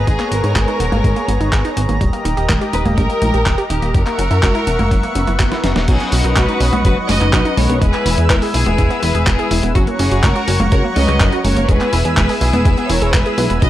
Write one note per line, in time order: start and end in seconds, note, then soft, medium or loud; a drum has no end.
0.00 1.97 B3 medium
0.00 1.97 G#4 medium
0.00 3.91 A#5 medium
0.07 0.18 G#1 loud
0.07 0.16 G#3 medium
0.07 0.30 G#4 loud
0.07 1.99 C#5 medium
0.07 kick loud
0.07 closed hi-hat medium
0.20 0.28 A#3 medium
0.20 clap soft
0.20 closed hi-hat soft
0.32 0.42 G#1 loud
0.32 0.37 B3 medium
0.32 1.77 A#4 loud
0.32 closed hi-hat medium
0.44 0.54 G#2 medium
0.44 0.52 D#4 medium
0.44 closed hi-hat soft
0.56 0.66 G#1 loud
0.56 0.64 G#4 loud
0.56 kick loud
0.56 clap loud
0.56 closed hi-hat medium
0.56 high conga medium
0.68 0.73 D#4 medium
0.68 closed hi-hat soft
0.80 0.91 D#1 medium
0.80 0.89 B3 medium
0.80 closed hi-hat medium
0.92 1.03 G#1 medium
0.92 0.97 A#3 loud
0.92 closed hi-hat soft
0.92 high conga medium
1.04 1.15 G#1 loud
1.04 1.13 G#3 medium
1.04 kick loud
1.04 closed hi-hat medium
1.16 1.25 A#3 medium
1.16 closed hi-hat soft
1.28 1.39 G#1 medium
1.28 1.34 B3 medium
1.28 closed hi-hat medium
1.40 1.51 G#1 medium
1.40 1.49 D#4 medium
1.40 closed hi-hat soft
1.53 1.63 G#1 loud
1.53 1.64 G#4 medium
1.53 kick loud
1.53 clap loud
1.53 closed hi-hat medium
1.65 1.70 D#4 loud
1.65 closed hi-hat soft
1.77 1.87 G#1 medium
1.77 1.85 B3 medium
1.77 closed hi-hat medium
1.89 1.99 G#1 medium
1.89 2.00 A#3 medium
1.89 closed hi-hat soft
2.01 2.12 D#1 medium
2.01 2.09 G3 medium
2.01 3.93 G4 medium
2.01 5.84 A#4 medium
2.01 3.93 D#5 medium
2.01 kick loud
2.01 closed hi-hat medium
2.13 2.22 A#3 medium
2.13 closed hi-hat soft
2.25 2.36 D#1 medium
2.25 2.30 D#4 medium
2.25 closed hi-hat medium
2.37 2.48 D#1 medium
2.37 2.46 G4 medium
2.37 closed hi-hat soft
2.49 2.60 D#1 loud
2.49 2.58 A#4 loud
2.49 kick loud
2.49 clap loud
2.49 closed hi-hat medium
2.49 high conga medium
2.61 2.66 G4 loud
2.61 closed hi-hat soft
2.73 2.84 D#1 medium
2.73 2.82 D#4 medium
2.73 2.84 B4 loud
2.73 closed hi-hat medium
2.85 2.96 D#1 medium
2.85 2.91 A#3 loud
2.85 closed hi-hat soft
2.85 high conga medium
2.98 3.08 A#1 loud
2.98 3.06 G3 medium
2.98 3.66 A#4 loud
2.98 kick loud
2.98 closed hi-hat medium
3.10 3.18 A#3 medium
3.10 closed hi-hat soft
3.22 3.32 A#1 medium
3.22 3.27 D#4 medium
3.22 closed hi-hat medium
3.22 high conga medium
3.34 3.44 A#1 medium
3.34 3.43 G4 medium
3.34 closed hi-hat soft
3.46 3.57 D#1 loud
3.46 3.58 A#4 medium
3.46 kick loud
3.46 clap loud
3.46 closed hi-hat medium
3.58 3.63 G4 loud
3.58 closed hi-hat soft
3.70 3.81 D#1 medium
3.70 3.79 D#4 medium
3.70 3.93 G4 medium
3.70 closed hi-hat medium
3.82 3.93 D#1 medium
3.82 3.94 A#3 medium
3.82 closed hi-hat soft
3.94 4.05 F#1 loud
3.94 4.03 F#3 medium
3.94 5.40 A#4 loud
3.94 5.86 E5 medium
3.94 5.86 F#5 medium
3.94 5.86 C#6 medium
3.94 kick loud
3.94 closed hi-hat medium
4.06 4.15 A#3 medium
4.06 clap soft
4.06 closed hi-hat soft
4.18 4.29 F#1 loud
4.18 4.24 C#4 medium
4.18 closed hi-hat medium
4.31 4.41 F#2 medium
4.31 4.39 E4 medium
4.31 closed hi-hat soft
4.43 4.53 F#1 loud
4.43 4.51 F#4 loud
4.43 kick loud
4.43 clap loud
4.43 closed hi-hat medium
4.43 high conga medium
4.55 4.60 E4 loud
4.55 closed hi-hat soft
4.67 4.78 E1 medium
4.67 4.76 C#4 medium
4.67 closed hi-hat medium
4.79 4.90 F#1 medium
4.79 4.84 A#3 loud
4.79 closed hi-hat soft
4.79 high conga medium
4.91 5.02 F#1 loud
4.91 5.00 F#3 medium
4.91 kick loud
4.91 closed hi-hat medium
4.91 swell medium
5.03 5.12 A#3 medium
5.03 closed hi-hat soft
5.15 5.26 F#1 medium
5.15 5.21 C#4 medium
5.15 closed hi-hat medium
5.27 5.38 F#1 medium
5.27 5.36 E4 medium
5.27 closed hi-hat soft
5.40 5.50 F#1 loud
5.40 5.51 F#4 medium
5.40 kick loud
5.40 clap loud
5.40 closed hi-hat medium
5.52 5.57 E4 loud
5.52 snare soft
5.52 closed hi-hat soft
5.64 5.74 F#1 medium
5.64 5.72 C#4 medium
5.64 snare medium
5.64 closed hi-hat medium
5.76 5.86 E1 medium
5.76 5.87 A#3 medium
5.76 snare medium
5.76 closed hi-hat soft
5.88 5.99 B1 loud
5.88 5.97 F#3 medium
5.88 7.54 F#3 medium
5.88 7.54 C#4 medium
5.88 7.54 D#4 medium
5.88 6.11 D#4 medium
5.88 6.11 G#4 medium
5.88 7.55 B4 medium
5.88 9.71 B4 medium
5.88 7.80 D#5 medium
5.88 7.80 F#5 medium
5.88 7.80 C#6 medium
5.88 kick loud
5.88 closed hi-hat medium
5.88 crash loud
6.00 6.09 B3 medium
6.00 closed hi-hat soft
6.12 6.23 B1 loud
6.12 6.17 C#4 medium
6.12 6.35 F#4 medium
6.12 6.35 A#4 medium
6.12 open hi-hat loud
6.24 6.35 B1 medium
6.24 6.33 D#4 medium
6.24 closed hi-hat medium
6.36 6.47 B1 loud
6.36 6.45 F#4 loud
6.36 6.85 F#4 medium
6.36 6.84 B4 loud
6.36 kick loud
6.36 clap loud
6.36 closed hi-hat medium
6.36 high conga medium
6.49 6.54 D#4 loud
6.49 closed hi-hat soft
6.60 6.71 B1 medium
6.60 6.69 C#4 medium
6.60 open hi-hat loud
6.73 6.83 B1 medium
6.73 6.78 B3 loud
6.73 closed hi-hat medium
6.73 high conga medium
6.85 6.95 F#1 loud
6.85 6.93 F#3 medium
6.85 6.96 F#4 medium
6.85 6.96 B4 loud
6.85 kick loud
6.85 closed hi-hat medium
6.97 7.05 B3 medium
7.09 7.20 F#1 medium
7.09 7.14 C#4 medium
7.09 7.55 B4 medium
7.09 7.54 D#5 loud
7.09 open hi-hat loud
7.09 high conga medium
7.21 7.32 F#1 medium
7.21 7.30 D#4 medium
7.21 clap soft
7.21 closed hi-hat medium
7.33 7.44 B1 loud
7.33 7.45 F#4 medium
7.33 kick loud
7.33 clap loud
7.33 closed hi-hat medium
7.45 7.50 D#4 loud
7.45 closed hi-hat soft
7.57 7.68 B1 medium
7.57 7.79 F#3 medium
7.57 7.66 C#4 medium
7.57 7.79 C#4 medium
7.57 7.79 D#4 medium
7.57 7.82 A#4 medium
7.57 7.79 B4 loud
7.57 7.82 C#5 medium
7.57 open hi-hat loud
7.57 high conga medium
7.69 7.80 B1 medium
7.69 7.81 B3 medium
7.69 closed hi-hat medium
7.81 7.92 E1 loud
7.81 7.90 G#3 medium
7.81 9.48 G#3 medium
7.81 9.48 B3 medium
7.81 9.48 E4 medium
7.81 8.27 G#4 medium
7.81 8.27 B4 loud
7.81 9.48 B4 medium
7.81 9.73 E5 medium
7.81 9.73 G#5 medium
7.81 9.73 E6 medium
7.81 kick loud
7.81 closed hi-hat medium
7.94 8.02 B3 medium
7.94 clap soft
7.94 closed hi-hat soft
8.06 8.16 E1 loud
8.06 8.11 E4 medium
8.06 open hi-hat loud
8.18 8.28 E2 medium
8.18 8.26 G#4 medium
8.18 closed hi-hat medium
8.30 8.41 E1 loud
8.30 8.42 E4 medium
8.30 8.41 A#4 medium
8.30 8.39 B4 loud
8.30 kick loud
8.30 clap loud
8.30 closed hi-hat medium
8.30 high conga medium
8.42 8.47 G#4 loud
8.42 open hi-hat medium
8.54 8.65 B1 medium
8.54 8.63 E4 medium
8.54 9.00 E4 medium
8.54 8.99 G#4 loud
8.54 open hi-hat loud
8.66 8.77 E1 medium
8.66 8.71 B3 loud
8.66 closed hi-hat medium
8.66 high conga medium
8.78 8.89 E1 loud
8.78 8.87 G#3 medium
8.78 kick loud
8.78 closed hi-hat medium
8.90 8.99 B3 medium
8.90 closed hi-hat soft
9.02 9.13 E1 loud
9.02 9.08 E4 medium
9.02 9.25 G#4 medium
9.02 9.27 B4 medium
9.02 open hi-hat loud
9.15 9.25 E1 medium
9.15 9.23 G#4 medium
9.15 closed hi-hat medium
9.27 9.37 E1 loud
9.27 9.64 E4 medium
9.27 9.63 G#4 loud
9.27 9.38 B4 medium
9.27 kick loud
9.27 clap loud
9.27 closed hi-hat medium
9.39 9.44 G#4 loud
9.39 closed hi-hat soft
9.51 9.62 E1 loud
9.51 9.72 G#3 medium
9.51 9.72 B3 medium
9.51 9.72 E4 medium
9.51 9.60 E4 medium
9.51 9.72 B4 loud
9.51 open hi-hat loud
9.63 9.74 E1 medium
9.63 9.75 B3 medium
9.63 closed hi-hat medium
9.75 9.86 F#1 loud
9.75 11.42 F#3 medium
9.75 9.84 F#3 medium
9.75 11.42 C#4 medium
9.75 9.87 C#4 medium
9.75 9.86 F#4 medium
9.75 11.42 F#4 medium
9.75 11.42 C#5 medium
9.75 11.67 C#5 medium
9.75 11.67 F#5 medium
9.75 11.67 A#5 medium
9.75 11.67 C#6 medium
9.75 kick loud
9.75 closed hi-hat medium
9.87 9.96 A#3 medium
9.87 closed hi-hat soft
9.99 10.10 F#1 loud
9.99 10.05 C#4 medium
9.99 10.22 E4 medium
9.99 10.22 G#4 medium
9.99 open hi-hat loud
10.11 10.22 F#1 medium
10.11 10.20 F#4 medium
10.11 closed hi-hat medium
10.23 10.34 F#1 loud
10.23 10.72 F#4 medium
10.23 10.70 A#4 loud
10.23 10.32 A#4 loud
10.23 kick loud
10.23 clap loud
10.23 closed hi-hat medium
10.23 high conga medium
10.36 10.41 F#4 loud
10.36 closed hi-hat soft
10.48 10.58 F#1 medium
10.48 10.56 C#4 medium
10.48 open hi-hat loud
10.60 10.70 F#1 medium
10.60 10.65 A#3 loud
10.60 closed hi-hat medium
10.60 high conga medium
10.71 10.82 C#2 loud
10.71 10.81 F#3 medium
10.71 10.83 F#4 medium
10.71 10.82 A#4 loud
10.71 kick loud
10.71 closed hi-hat medium
10.84 10.93 A#3 medium
10.95 11.07 C#2 medium
10.95 11.01 C#4 medium
10.95 11.41 B4 medium
10.95 11.41 D#5 loud
10.95 open hi-hat loud
10.95 high conga medium
11.08 11.19 C#2 medium
11.08 11.17 F#4 medium
11.08 clap soft
11.08 closed hi-hat medium
11.20 11.31 F#1 loud
11.20 11.32 A#4 medium
11.20 kick loud
11.20 clap loud
11.20 closed hi-hat medium
11.32 11.38 F#4 loud
11.32 closed hi-hat soft
11.44 11.55 F#1 loud
11.44 11.66 A#3 medium
11.44 11.66 C#4 medium
11.44 11.53 C#4 medium
11.44 11.66 F#4 medium
11.44 11.68 A#4 medium
11.44 11.67 C#5 loud
11.44 11.66 C#5 loud
11.44 open hi-hat loud
11.44 high conga medium
11.57 11.67 F#1 medium
11.57 11.68 A#3 medium
11.57 closed hi-hat medium
11.69 11.79 E1 loud
11.69 13.35 G#3 medium
11.69 11.77 G#3 medium
11.69 13.35 B3 medium
11.69 13.35 E4 medium
11.69 12.17 G#4 medium
11.69 12.16 B4 loud
11.69 13.35 B4 medium
11.69 13.70 B4 medium
11.69 13.60 E5 medium
11.69 13.61 G#5 medium
11.69 13.60 E6 medium
11.69 kick loud
11.69 closed hi-hat medium
11.81 11.89 B3 medium
11.81 clap soft
11.81 closed hi-hat soft
11.93 12.03 E1 loud
11.93 11.98 E4 medium
11.93 open hi-hat loud
12.05 12.16 E2 medium
12.05 12.14 G#4 medium
12.05 closed hi-hat medium
12.17 12.28 E1 loud
12.17 12.39 G#4 medium
12.17 12.39 B4 loud
12.17 12.26 B4 loud
12.17 kick loud
12.17 clap loud
12.17 closed hi-hat medium
12.17 high conga medium
12.29 12.34 G#4 loud
12.29 open hi-hat medium
12.41 12.52 B1 medium
12.41 12.50 E4 medium
12.41 12.87 E4 medium
12.41 12.86 G#4 loud
12.41 open hi-hat loud
12.53 12.64 E1 medium
12.53 12.59 B3 loud
12.53 closed hi-hat medium
12.53 high conga medium
12.65 12.76 E1 loud
12.65 12.74 G#3 medium
12.65 kick loud
12.65 closed hi-hat medium
12.78 12.86 B3 medium
12.78 closed hi-hat soft
12.89 13.00 E1 loud
12.89 12.95 E4 medium
12.89 13.14 A#4 medium
12.89 13.14 C#5 loud
12.89 open hi-hat loud
13.02 13.12 E1 medium
13.02 13.10 G#4 medium
13.02 closed hi-hat medium
13.13 13.24 E1 loud
13.13 13.51 G#4 medium
13.13 13.50 B4 loud
13.13 13.25 B4 medium
13.13 kick loud
13.13 clap loud
13.13 closed hi-hat medium
13.26 13.31 G#4 loud
13.26 closed hi-hat soft
13.38 13.49 B1 medium
13.38 13.59 G#3 medium
13.38 13.59 B3 medium
13.38 13.59 E4 medium
13.38 13.47 E4 medium
13.38 13.59 B4 loud
13.38 open hi-hat loud
13.50 13.61 E1 medium
13.50 13.62 B3 medium
13.50 closed hi-hat medium
13.62 13.70 B1 loud
13.62 13.70 F#3 medium
13.62 13.70 C#4 medium
13.62 13.70 D#4 medium
13.62 13.70 B4 medium
13.62 13.70 D#5 loud
13.62 13.70 D#5 medium
13.62 13.70 F#5 medium
13.62 13.70 C#6 medium
13.62 kick loud
13.62 closed hi-hat medium